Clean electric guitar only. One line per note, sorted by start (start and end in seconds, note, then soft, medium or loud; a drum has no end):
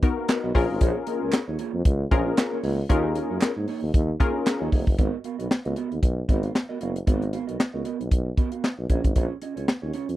0.02 muted clean electric guitar stroke soft
0.17 0.27 B3 soft
0.17 0.28 F#4 medium
0.17 0.28 A#4 medium
0.17 0.27 F5 medium
0.43 0.54 B3 medium
0.43 0.55 F#4 medium
0.43 0.55 A#4 medium
0.43 0.55 D#5 medium
0.55 0.68 A#3 medium
0.55 0.68 F4 medium
0.55 0.68 G#4 medium
0.69 muted clean electric guitar stroke medium
0.81 0.97 A#3 medium
0.81 0.97 F4 medium
0.81 0.98 G#4 loud
0.81 0.98 C#5 loud
1.07 1.20 A#3 medium
1.07 1.20 F4 medium
1.07 1.20 G#4 medium
1.07 1.21 D#5 medium
1.21 1.32 A#3 soft
1.21 1.32 F4 medium
1.21 1.32 G#4 medium
1.21 1.32 C#5 medium
1.33 muted clean electric guitar stroke soft
1.48 1.58 A#3 medium
1.48 1.58 F4 medium
1.48 1.58 G#4 medium
1.48 1.58 C#5 medium
1.59 1.75 A#3 medium
1.59 1.73 F4 medium
1.59 1.73 G#4 medium
1.59 1.73 C#5 medium
1.74 muted clean electric guitar stroke medium
1.85 muted clean electric guitar stroke medium
2.00 muted clean electric guitar stroke medium
2.11 2.26 A#3 medium
2.11 2.26 F4 medium
2.11 2.25 G#4 loud
2.11 2.25 C#5 medium
2.26 2.36 A#3 medium
2.26 2.36 F4 medium
2.26 2.36 G#4 medium
2.26 2.36 D#5 medium
2.52 2.62 A#3 medium
2.52 2.62 F4 medium
2.52 2.63 G#4 medium
2.52 2.64 C#5 loud
2.63 2.76 A#3 medium
2.63 2.77 F4 medium
2.63 2.77 G#4 medium
2.63 2.77 D#5 medium
2.78 muted clean electric guitar stroke medium
2.89 3.06 A#3 medium
2.89 3.06 D#4 medium
2.89 3.06 G#4 loud
2.89 3.06 C#5 loud
3.15 3.29 A#3 medium
3.15 3.29 D#4 medium
3.15 3.29 G#4 medium
3.15 3.29 D#5 medium
3.30 3.41 A#3 soft
3.30 3.41 D#4 medium
3.30 3.41 G#4 medium
3.30 3.41 C#5 medium
3.42 muted clean electric guitar stroke soft
3.56 3.66 A#3 medium
3.56 3.67 D#4 medium
3.56 3.67 G#4 medium
3.56 3.67 C#5 medium
3.67 3.84 A#3 medium
3.67 3.82 D#4 medium
3.67 3.82 G#4 medium
3.67 3.81 C#5 medium
3.82 muted clean electric guitar stroke medium
3.94 muted clean electric guitar stroke soft
4.09 muted clean electric guitar stroke soft
4.20 4.34 A#3 loud
4.20 4.34 D#4 loud
4.20 4.34 G#4 loud
4.20 4.34 C#5 loud
4.34 4.45 A#3 soft
4.34 4.45 D#4 soft
4.34 4.45 G#4 soft
4.34 4.45 D#5 medium
4.46 muted clean electric guitar stroke soft
4.60 4.71 A#3 medium
4.60 4.71 D#4 medium
4.60 4.71 G#4 medium
4.60 4.73 C#5 loud
4.72 4.85 A#3 medium
4.72 4.85 D#4 medium
4.72 4.86 G#4 medium
4.72 4.86 D#5 medium
4.86 muted clean electric guitar stroke medium
4.98 5.14 B3 medium
4.98 5.15 F#4 medium
4.98 5.15 A#4 loud
4.98 5.15 D#5 medium
5.24 5.37 B3 medium
5.24 5.38 F#4 medium
5.24 5.38 A#4 medium
5.24 5.38 F5 medium
5.39 5.49 B3 soft
5.39 5.50 F#4 medium
5.39 5.49 A#4 medium
5.39 5.49 D#5 medium
5.50 muted clean electric guitar stroke soft
5.65 5.75 B3 soft
5.65 5.76 F#4 soft
5.65 5.76 A#4 medium
5.65 5.75 D#5 medium
5.77 5.93 B3 medium
5.77 5.91 F#4 medium
5.77 5.90 A#4 medium
5.77 5.90 D#5 medium
5.91 muted clean electric guitar stroke soft
6.02 muted clean electric guitar stroke soft
6.17 muted clean electric guitar stroke soft
6.28 6.43 B3 medium
6.28 6.43 F#4 medium
6.28 6.42 A#4 medium
6.28 6.43 D#5 medium
6.43 6.53 B3 soft
6.43 6.54 F#4 soft
6.43 6.54 A#4 soft
6.43 6.54 F5 medium
6.69 6.79 B3 medium
6.69 6.80 F#4 medium
6.69 6.80 A#4 medium
6.69 6.81 D#5 medium
6.80 6.94 B3 medium
6.80 6.94 F#4 medium
6.80 6.94 A#4 medium
6.80 6.94 F5 medium
6.95 muted clean electric guitar stroke soft
7.07 7.23 B3 medium
7.07 7.23 F#4 medium
7.07 7.23 A#4 medium
7.07 7.24 D#5 medium
7.33 7.46 B3 medium
7.33 7.46 F#4 medium
7.33 7.46 A#4 medium
7.33 7.47 F5 medium
7.47 7.57 B3 soft
7.47 7.58 F#4 medium
7.47 7.58 A#4 medium
7.47 7.58 D#5 medium
7.59 muted clean electric guitar stroke soft
7.73 7.83 B3 medium
7.73 7.84 F#4 medium
7.73 7.84 A#4 medium
7.73 7.84 D#5 medium
7.85 8.01 B3 medium
7.85 7.99 F#4 medium
7.85 7.99 A#4 medium
7.85 7.98 D#5 medium
7.99 muted clean electric guitar stroke soft
8.11 muted clean electric guitar stroke soft
8.26 muted clean electric guitar stroke soft
8.37 8.52 B3 medium
8.37 8.51 F#4 loud
8.37 8.51 A#4 medium
8.37 8.51 D#5 loud
8.52 8.63 B3 soft
8.52 8.63 F#4 soft
8.52 8.62 A#4 medium
8.52 8.62 F5 soft
8.78 muted clean electric guitar stroke soft
8.89 9.06 C#4 medium
8.89 9.04 F4 medium
8.89 9.03 G#4 medium
8.89 9.04 D#5 medium
9.04 muted clean electric guitar stroke soft
9.16 9.32 C#4 medium
9.16 9.32 F4 medium
9.16 9.32 G#4 medium
9.16 9.33 C#5 medium
9.42 9.55 C#4 medium
9.42 9.55 F4 medium
9.42 9.55 G#4 medium
9.42 9.55 D#5 medium
9.56 9.67 C#4 soft
9.56 9.67 F4 medium
9.56 9.67 G#4 medium
9.56 9.67 C#5 medium
9.68 muted clean electric guitar stroke soft
9.82 9.93 C#4 soft
9.82 9.93 F4 medium
9.82 9.93 G#4 medium
9.82 9.93 C#5 medium
9.94 10.10 C#4 medium
9.94 10.08 F4 medium
9.94 10.08 G#4 medium
9.94 10.07 C#5 medium
10.08 muted clean electric guitar stroke soft